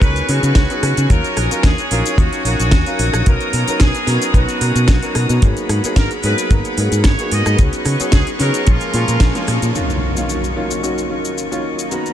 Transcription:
Already playing: B4 G#5 C#6
0.01 C#2 F#3 B3 C#4 D#4 A#4 B4, kick, closed hi-hat, cabasa, shaker
0.16 closed hi-hat, cabasa, shaker
0.28 C#3 F#3 B3 C#4 D#4 F#4 G#4, open hi-hat, cabasa
0.43 C#3, closed hi-hat, cabasa, shaker
0.55 C#2, kick, snare, closed hi-hat, cabasa, shaker
0.70 F#3 B3 C#4 D#4 G#4, closed hi-hat, cabasa, shaker
0.83 C#3, cross-stick, open hi-hat, cabasa
0.97 C#3, closed hi-hat, cabasa, shaker
1.10 D#2 F#3 C#4 D#4 F4 A#4 C#5 D#6, kick, closed hi-hat, cabasa, shaker
1.24 closed hi-hat, shaker
1.37 A#1, cross-stick, open hi-hat, cabasa
1.51 F#3 C#4 D#4 F4 A#4, closed hi-hat, cabasa, shaker
1.63 D#2 G#4, kick, snare, closed hi-hat, cabasa, shaker
1.78 closed hi-hat, cabasa, shaker
1.91 A#1 F#3 C#4 D#4 F4 A#4, open hi-hat, cabasa
2.06 closed hi-hat, cabasa, shaker
2.18 D#2 F#3 C#4 D#4 F4 F#4 C#5, kick, closed hi-hat, cabasa, shaker
2.33 closed hi-hat, cabasa, shaker
2.45 A#1 F#3 C#4 D#4 F#4 A#4 F5, open hi-hat, cabasa
2.60 A#1, closed hi-hat, cabasa, shaker
2.71 D#2, kick, snare, closed hi-hat, cabasa, shaker
2.86 F#3 C#4 D#4 A#4 F5, closed hi-hat, cabasa, shaker
2.99 A#1, open hi-hat, cabasa
3.14 A#1, cross-stick, closed hi-hat, cabasa, shaker
3.26 B1 F#3 B3 C#4 D#4 A#4 A#5, kick, closed hi-hat, cabasa, shaker
3.41 closed hi-hat, shaker
3.53 B2, open hi-hat, cabasa
3.67 F#3 B3 C#4 D#4 A#4, muted fingered electric bass stroke, closed hi-hat, cabasa, shaker
3.80 B1 G#4, kick, snare, closed hi-hat, cabasa, shaker
3.94 closed hi-hat, cabasa, shaker
4.07 B2 F#3 B3 C#4 D#4 A#4, snare, open hi-hat, cabasa
4.22 closed hi-hat, cabasa, shaker
4.34 B1 F#3 B3 C#4 D#4 F#4 B4, kick, closed hi-hat, cabasa, shaker
4.49 closed hi-hat, cabasa, shaker
4.61 B2 F#3 B3 C#4 D#4 A#4, open hi-hat, cabasa
4.76 B2, closed hi-hat, cabasa, shaker
4.88 B1 F#4, kick, snare, closed hi-hat, cabasa, shaker
5.03 F#3 B3 C#4 D#4 A#4, closed hi-hat, cabasa, shaker
5.15 B2, cross-stick, open hi-hat, cabasa
5.29 B2, closed hi-hat, cabasa, shaker
5.42 G#1 F#3 A#3 B3 D#4 G#4 F#5 B5, kick, closed hi-hat, cabasa, shaker
5.57 closed hi-hat, shaker
5.69 G#2, cross-stick, open hi-hat, cabasa
5.84 F#3 A#3 B3 D#4 G#4, muted fingered electric bass stroke, closed hi-hat, cabasa, shaker
5.96 G#1 A#4, kick, snare, closed hi-hat, cabasa, shaker
6.11 closed hi-hat, cabasa, shaker
6.23 G#2 F#3 A#3 B3 D#4 G#4 B4, open hi-hat, cabasa
6.38 closed hi-hat, cabasa, shaker
6.50 G#1 F#3 A#3 B3 D#4 A#4, kick, closed hi-hat, cabasa, shaker
6.65 closed hi-hat, cabasa, shaker
6.77 G#2 F#3 A#3 B3 D#4 G#4, open hi-hat, cabasa
6.92 G#2, closed hi-hat, cabasa, shaker
7.04 G#1 C#5, kick, snare, closed hi-hat, cabasa, shaker
7.19 F#3 A#3 B3 D#4 G#4, closed hi-hat, cabasa, shaker
7.31 G#2 D#5, open hi-hat, cabasa
7.45 G#2, cross-stick, closed hi-hat, cabasa, shaker
7.58 C#2 F#3 B3 C#4 D#4 G#4 B4 C#6, kick, closed hi-hat, cabasa, shaker
7.73 closed hi-hat, cabasa, shaker
7.85 C#3, cross-stick, open hi-hat, cabasa
8.00 F#3 B3 C#4 D#4 G#4, muted fingered electric bass stroke, closed hi-hat, cabasa, shaker
8.12 C#2 G#4, kick, snare, closed hi-hat, cabasa, shaker
8.27 closed hi-hat, cabasa, shaker
8.39 C#3 F#3 B3 C#4 D#4 G#4 A#4, snare, open hi-hat, cabasa
8.54 closed hi-hat, cabasa, shaker
8.66 A#1 F3 G#3 A#3 C#4 F4 G#4 A#4 G#5, kick, closed hi-hat, cabasa, shaker
8.80 closed hi-hat, cabasa, shaker
8.94 A#2 F3 G#3 A#3 C#4 F4, open hi-hat, cabasa
9.08 A#2, closed hi-hat, cabasa, shaker
9.20 A#1, kick, snare, closed hi-hat, cabasa, shaker
9.35 F3 G#3 A#3 C#4 F4, closed hi-hat, cabasa, shaker
9.47 A#2, cross-stick, open hi-hat, cabasa
9.62 A#2, closed hi-hat, cabasa, shaker
9.75 D#3 F#3 A#3 C#4 F4 D#5 C#6, impact, shaker
9.90 shaker
10.16 D#3 F#3 A#3 C#4 F4, shaker
10.29 shaker
10.44 shaker
10.56 D#3 F#3 A#3 C#4 F4
10.71 shaker
10.82 D#3 F#3 A#3 C#4 F#4, shaker
10.98 shaker
11.09 D#3 F#3 A#3 C#4 F4
11.25 shaker
11.38 shaker
11.51 D#3 F#3 A#3 C#4 F4, shaker
11.79 shaker
11.91 D#3 A#3 B3 C#4 F#4 A#5 B5, shaker
12.06 shaker

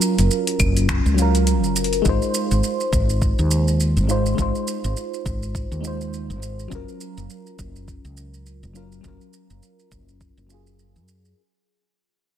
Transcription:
Already playing: F#3 C#4 F4 A#4
0.02 shaker
0.18 F#1, closed hi-hat, shaker
0.31 shaker
0.47 closed hi-hat, shaker
0.60 F#1, kick, claves, shaker
0.77 closed hi-hat, shaker
0.89 finger snap, kick, closed hi-hat, shaker
1.06 C#2, shaker
1.14 F#3 C#4, closed hi-hat, shaker
1.19 F4 A#4
1.35 closed hi-hat, shaker
1.47 closed hi-hat, shaker
1.64 F#1, shaker
1.76 closed hi-hat, shaker
1.84 closed hi-hat
1.93 closed hi-hat, shaker
2.02 G#1 G#3 D#4, kick, shaker
2.07 F4 C5
2.22 shaker
2.34 shaker
2.51 G#1, shaker
2.64 shaker
2.80 shaker
2.93 G#1, kick, shaker
3.10 shaker
3.22 kick, shaker
3.39 D#2, shaker
3.51 shaker
3.68 shaker
3.80 shaker
3.97 G#1, shaker
4.07 G#3 D#4 F4 C5, shaker
4.26 shaker
4.35 G#1 G#3 D#4, kick, shaker
4.40 F4 C5
4.55 shaker
4.68 shaker
4.84 G#1, shaker
4.97 shaker
5.14 shaker
5.26 G#1, kick, shaker
5.43 shaker
5.55 kick, shaker
5.72 D#2, shaker
5.81 G#3 D#4, shaker
5.85 F4 C5
6.01 shaker
6.14 shaker
6.30 G#1, shaker
6.43 shaker
6.59 shaker
6.68 F#1 F#3 C#4, kick, shaker
6.73 F4 A#4
6.89 shaker
7.01 shaker
7.17 F#1, shaker
7.30 shaker
7.47 shaker
7.59 F#1, kick, shaker
7.76 shaker
7.88 kick, shaker
8.05 C#2, shaker
8.17 shaker
8.34 shaker
8.46 shaker
8.63 F#1, shaker
8.73 F#3 C#4 F4 A#4, shaker
8.92 shaker
9.01 F#1 F#3 C#4, kick, shaker
9.06 F4 A#4
9.21 shaker
9.33 shaker
9.50 F#1, shaker
9.63 shaker
9.79 shaker
9.92 F#1, kick, shaker
10.09 shaker
10.21 kick, shaker
10.37 F#1, shaker
10.47 F#3 C#4, shaker
10.52 F4 G#4
10.67 shaker
10.79 shaker
10.96 F#2, shaker
11.08 shaker
11.25 shaker

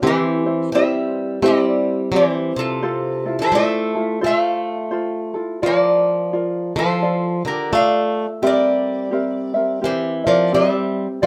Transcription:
0.02 E3 C4 E4 G4 C5
0.07 G4 C5
0.46 C4 E4 C5
0.72 G3 C4 E4 G4 C5 E5
1.42 G3 C4 E4 G4 C5 D5
1.47 G4
2.12 E3 C4 G4 C5
2.16 G4 C5
2.56 C3 F4 A4
2.83 F4 A4 C5
3.25 E4 F4 A4
3.39 E3 A4 C5
3.52 A3 E4 F4 A4 C5 E5
3.56 C5
3.95 E4 F4 A4
4.21 G#3 F4 A4 C5
4.26 C5 E5
4.35 A3 F5
4.91 F4 A4 C5
5.34 E4 F4 A4
5.62 F3 F4 A#4 D5
5.67 A#4
6.33 F4 A#4 D5
6.76 F3 F4 A4 C5
7.02 F4 A4 D5
7.45 D3 F4 G4 A#4
7.71 A3 F4 A4 D5 F5
7.77 D5
8.42 G3 C4 G4 A#4 E5
8.47 A#4 D5
9.11 C4 G4 A#4 E5
9.54 C4 A#4 E5
9.82 E3 C4 G4 A#4 C5 E5
9.86 G4
10.24 F3 C4 A#4 D5 E5
10.52 G3 C4 G4 A#4 C5 E5
11.22 F3 F4 D5

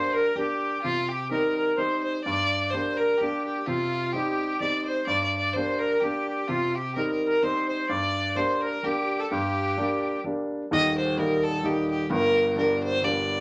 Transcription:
Already playing: G3 A#3 D4 C5
0.14 A#4
0.35 G3 A#3 D4 G4
0.82 C3 F4
1.09 G4
1.30 G3 C4 D#4 A#4
1.57 A#4
1.77 G3 C4 D#4 C5
2.03 C5
2.24 G2 D5
2.70 G3 A#3 D4 C5
2.97 A#4
3.18 G3 A#3 D4 G4
3.45 G4
3.66 C3 F4
4.13 G3 C4 D#4 G4
4.30 G4
4.45 G4
4.60 G3 C4 D#4 D5
4.85 C5
5.07 G2 D5
5.24 D5
5.37 D5
5.53 G3 A#3 D4 C5
5.79 A#4
6.00 G3 A#3 D4 G4
6.28 G4
6.48 C3 F4
6.75 G4
6.95 G3 C4 D#4 A#4
7.11 A#4
7.26 A#4
7.42 G3 C4 D#4 C5
7.68 C5
7.89 G2 D5
8.35 G3 A#3 D4 C5
8.61 A#4
8.83 G3 A#3 D4 G4
9.20 A4
9.30 G2 G4
9.77 G3 A#3 D4
10.24 G3 A#3 D4
10.71 D#1 D#2 D#5
10.98 C5
11.17 G3 A#3 D#4 A#4
11.44 A4
11.63 G3 A#3 D#4 G4
11.90 G4
12.10 G1 G2 A#4
12.55 G3 A#3 D4 A#4
12.83 C5
13.02 G3 A#3 D4 D5

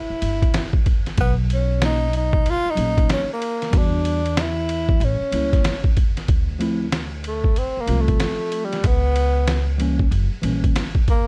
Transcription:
Already playing: E4
0.10 muted upright bass stroke
0.22 G1, ride
0.42 kick, ride
0.54 snare, hi-hat pedal, ride
0.73 kick
0.86 kick, ride
1.06 snare, ride
1.18 B1 B3, kick, ride
1.50 C#4, ride
1.80 F#3 A#3 C#4 D#4, snare, hi-hat pedal, ride
1.85 D#4
2.13 D#4, ride
2.33 kick
2.46 ride
2.50 F4
2.66 muted upright bass stroke
2.70 D#4
2.75 A#1 F#3 A#3 C#4 D#4, ride
2.98 kick, ride
3.09 C#4, snare, hi-hat pedal, ride
3.33 A#3
3.42 ride
3.62 snare, ride
3.70 E2 G3 B3 D4 F#4, kick, ride
3.77 D4
4.05 ride
4.26 ride
4.37 E4, snare, hi-hat pedal, ride
4.69 ride
4.89 kick
5.00 A1, ride
5.04 C#4
5.20 muted upright bass stroke
5.31 C#2 G3 A#3 C#4 E4, ride
5.53 kick, snare, ride
5.64 snare, hi-hat pedal, ride
5.84 kick
5.97 kick, ride
6.17 snare, ride
6.28 D2, kick, ride
6.59 F3 A3 C4 E4, ride
6.92 snare, hi-hat pedal, ride
7.24 A3, ride
7.44 kick
7.56 C4, ride
7.77 A#3, muted upright bass stroke
7.86 C2 F3 A3 C4 F4, ride
8.01 A3
8.08 kick, ride
8.20 snare, hi-hat pedal, ride
8.52 ride
8.65 G3
8.73 snare, ride
8.84 C#2 B3, kick, ride
9.16 ride
9.47 snare, hi-hat pedal, ride
9.78 E3 G3 A#3 C#4, ride
9.99 kick
10.11 F#1, ride
10.32 muted upright bass stroke
10.42 A#1 E3 G3 A#3 C#4, ride
10.64 kick, ride
10.76 snare, hi-hat pedal, ride
10.95 kick
11.08 A#3, kick, ride

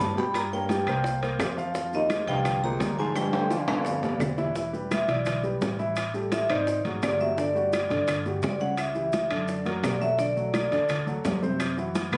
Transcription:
Already playing: G3 G4 B4
0.00 G2 A2 A5, high conga, maracas
0.16 B2 G3 G4 G5 B5, high conga, maracas
0.34 A#2 A#5, high bongo, high conga, high timbale, claves, maracas
0.52 G2 A#3 A#4 C#5 G5, high bongo, high conga, maracas
0.69 G3 G4 G5, high bongo, high conga, high timbale, low timbale, maracas
0.86 C2 A#3 A#4 C5, high bongo, high conga, high timbale, claves, maracas
1.04 high bongo, high conga, maracas
1.22 A#3 A#4 C5, high bongo, high conga, high timbale, maracas
1.39 F2, high bongo, low bongo, high conga, high timbale, low timbale, claves, maracas
1.57 F3 F4 F5, high conga, maracas
1.74 F3 F4 F5, high bongo, high conga, maracas
1.93 D#2 D#5, high bongo, high conga, maracas
2.10 G#3 G#4 C5, high bongo, high conga, high timbale, low timbale, claves, maracas
2.27 C2 G2 F3 F4 F5 G5, high bongo, high conga, high timbale, maracas
2.45 high bongo, high conga, low conga, high timbale, claves, maracas
2.63 A#2 G#3 G#4 C5 A#5, high bongo, high conga, low conga, maracas
2.80 D2, high bongo, low bongo, high conga, high timbale, low timbale, maracas
2.98 G#2 F3 F4 F5 G#5, high conga, maracas
3.15 G2 G5, high bongo, high conga, high timbale, claves, maracas
3.33 A3 A4 C5, high bongo, high conga, high timbale, maracas
3.50 F3 F4 F5, high bongo, high timbale, maracas
3.67 G1 F2 B3 B4 D5 F5, high bongo, high conga, high timbale, claves, maracas
3.85 high bongo, low conga, low timbale, maracas
4.02 B3 B4 D5, high bongo, low conga, low timbale, maracas
4.19 E1, high bongo, low bongo, low conga, low timbale, claves, maracas
4.37 E3 E4 E5, low conga, low timbale, maracas
4.55 E3 E4 E5, high bongo, high conga, maracas
4.73 G3 G4 B4, high bongo, high conga, maracas
4.91 E5, high bongo, high conga, high timbale, low timbale, claves, maracas
5.08 B1 E3 E4 D5 E5, high bongo, high timbale, maracas
5.25 high bongo, high conga, low conga, high timbale, claves, maracas
5.43 G3 G4 B4, high bongo, high conga, maracas
5.61 A1, high bongo, low bongo, high conga, high timbale, low timbale, maracas
5.79 E3 E4 E5, high conga, maracas
5.96 high bongo, high conga, high timbale, claves, maracas
6.14 G3 G4 A4, high bongo, high conga, maracas
6.32 E5, high bongo, high conga, high timbale, low timbale, maracas
6.49 G#1 D#3 D#4 C5 D5, high bongo, high conga, high timbale, claves, maracas
6.67 high bongo, high conga, maracas
6.85 G#1 F#3 F#4 G#4, high bongo, high conga, high timbale, maracas
7.02 G1 D5, high bongo, low bongo, high conga, high timbale, low timbale, claves, maracas
7.20 F#3 F#4 G4 E5, high conga, maracas
7.37 D3 D4 D5, high bongo, high conga, maracas
7.55 G3 F#4 G4, high bongo, high conga, maracas
7.73 D5, high bongo, high conga, high timbale, low timbale, claves, maracas
7.89 G2 D3 D4 D5, high bongo, high conga, high timbale, maracas
8.08 high bongo, high conga, low conga, high timbale, claves, maracas
8.25 G3 F#4 G4, high bongo, high conga, low conga, maracas
8.42 C#2 D5, high bongo, low bongo, high conga, high timbale, low timbale, maracas
8.60 C#3 C#4 C#5 F#5, high conga, maracas
8.77 E5, high bongo, high conga, high timbale, claves, maracas
8.95 E3 E4 G4, high bongo, high conga, maracas
9.13 E5, high bongo, high conga, high timbale, low timbale, maracas
9.30 F#2 D3 D4 D5, high bongo, high conga, high timbale, claves, maracas
9.48 high bongo, high conga, maracas
9.65 F#3 F#4 A#4, high bongo, high conga, high timbale, maracas
9.83 B1 D5, high bongo, low bongo, high timbale, low timbale, claves, maracas
10.00 F#3 F#4 A4 E5, high conga, maracas
10.19 D3 D4 D5, high bongo, high conga, maracas
10.36 F#3 F#4 A4, high bongo, high conga, maracas
10.54 D5, high bongo, high conga, high timbale, low timbale, claves, maracas
10.71 D2 D3 D4 D5, high bongo, high conga, high timbale, maracas
10.89 high bongo, high conga, low conga, high timbale, claves, maracas
11.06 F#3 F#4 A4, high bongo, high conga, maracas
11.25 F#2, high bongo, low bongo, high conga, high timbale, low timbale, maracas
11.42 C3 C4 C5, high conga, maracas
11.60 high bongo, high conga, high timbale, claves, maracas
11.77 E3 E4 F#4, high bongo, high conga, maracas
11.95 high bongo, high conga, high timbale, low timbale, maracas
12.12 B1 B2 B3 B4, high bongo, high conga, high timbale, claves, maracas

